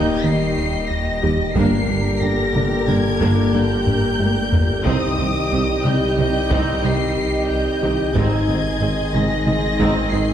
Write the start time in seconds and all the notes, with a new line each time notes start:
Already playing: D#1 D#2 D#3 G3 A#3 D#4 G4 D#5 G6
0.23 D#2 D#3 A#3 D#4 C7
0.57 D#2
0.90 D#2 A#6
1.23 D#2 G3 A#3 D#4 G4
1.55 G1 G2 D3 G3 A#3 D4 G4 A#4 C7, taiko
1.89 G1 G2 A#3 D4
2.22 G1 G2 A#3 G4 A#6
2.55 G1 G2 G3 A#3 D4, taiko mid
2.88 G1 G2 G3 A#3 D4 G#6, taiko mid
3.21 G1 G2 G3 A#3 D4, taiko
3.54 G1 G2 G3 A#3 D4 G6
3.87 G2, taiko low-mid
4.19 G2 G4, taiko high
4.52 G1 G2 A#3 D4, taiko low
4.85 C2 C3 D#3 G3 C4 D#4 G4 D#5 D#6, taiko
5.19 C2 C3 D#3 C4 D#4
5.51 C2 C3 C4
5.84 C2 C3 G3 C4 D#4 G6, taiko mid
6.17 C2 C3 G3 C4 D#4 G6, taiko mid
6.51 C2 C3 C4 D#4, taiko
6.83 C2 C3 G3 C4 D#4 C7
7.17 C2
7.49 C2 G6
7.82 C2 C3 D#3 C4 D#4 G4
8.15 G#1 G#2 D#3 G#3 C4 D#4 G#4 D#5 G#6, taiko
8.48 G#1 G#2 C4 D#4
8.81 G#1 G#2 C4 G#4
9.14 G#1 G#2 G#3 C4 D#4 A#6, taiko mid
9.47 G#1 G#2 G#3 C4 D#4 A#6, taiko mid
9.80 G#1 G#2 G#3 C4 D#4, taiko
10.12 G#1 G#2 G#3 C4 D#4 C7